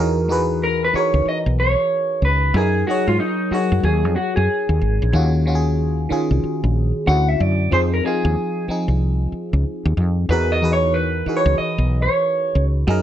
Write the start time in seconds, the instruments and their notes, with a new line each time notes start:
Already playing: fretless electric bass E2, fm electric piano E3 D#4 C#5
0.00 fm electric piano F#4 G#4 A#4
0.28 fm electric piano E3 D#4 F#4 G#4 B4
0.64 clean electric guitar A#4
0.84 clean electric guitar B4
0.93 fm electric piano E3 D#4 F#4 G#4, clean electric guitar C#5, muted fretless electric bass stroke
0.97 fm electric piano A#4
1.14 fretless electric bass C#2
1.26 clean electric guitar D#5, muted fretless electric bass stroke
1.46 fretless electric bass B1
1.60 clean electric guitar C#5
2.22 fretless electric bass C#2, clean electric guitar B4
2.54 fretless electric bass F#2, fm electric piano F#3 D#4 G#4 A#4, clean electric guitar G#4
2.87 fm electric piano F#3 D#4 G#4 C#5, clean electric guitar F#4
3.08 fretless electric bass G#2, clean electric guitar F4
3.20 clean electric guitar D#4
3.51 fm electric piano F#3 D#4 G#4 C#5, clean electric guitar F#4, muted fretless electric bass stroke
3.72 fretless electric bass F#2
3.83 fretless electric bass D#2, clean electric guitar G#4
4.05 fretless electric bass F2
4.16 clean electric guitar F#4
4.36 fretless electric bass F#2, clean electric guitar G#4
4.69 fretless electric bass D#2
4.81 fretless electric bass G#1
5.02 fretless electric bass A#1
5.13 fretless electric bass D#2, fm electric piano D#3 C#4 F4 F#4
5.46 fm electric piano D#3 C#4 F4 F#4
5.55 fm electric piano G#4
6.09 fm electric piano D#3 C#4 F4 G#4, muted fretless electric bass stroke
6.31 fretless electric bass C2
6.44 muted fretless electric bass stroke
6.64 fretless electric bass A#1
7.06 fretless electric bass D2, fm electric piano D3 C#4 E4 F#4, clean electric guitar F#5
7.28 clean electric guitar E5
7.40 fretless electric bass F#2, clean electric guitar D5
7.71 fretless electric bass F2, fm electric piano F3 C4 D#4 G#4, clean electric guitar C5
7.94 clean electric guitar A#4
8.03 fm electric piano F3 C4 D#4 F4, clean electric guitar G#4
8.25 fretless electric bass D#2
8.68 fm electric piano F3 C4 D#4 G#4, muted fretless electric bass stroke
8.88 fretless electric bass C2
9.32 muted fretless electric bass stroke
9.53 fretless electric bass C#2
9.85 fretless electric bass D#2
9.97 fretless electric bass F2
10.29 fretless electric bass E2, fm electric piano E3 D#4 F#4 G#4 A#4, clean electric guitar B4
10.52 clean electric guitar D#5
10.62 fm electric piano E3 D#4 F#4 G#4 B4
10.73 clean electric guitar C#5
10.94 clean electric guitar B4
11.26 fm electric piano E3 D#4 F#4 G#4 A#4, muted fretless electric bass stroke
11.36 fm electric piano B4, clean electric guitar C#5
11.46 fretless electric bass C#2
11.58 clean electric guitar D#5, muted fretless electric bass stroke
11.78 fretless electric bass B1
12.02 clean electric guitar C#5
12.55 fretless electric bass C#2
12.87 fretless electric bass F#2, fm electric piano F#3 D#4 G#4 A#4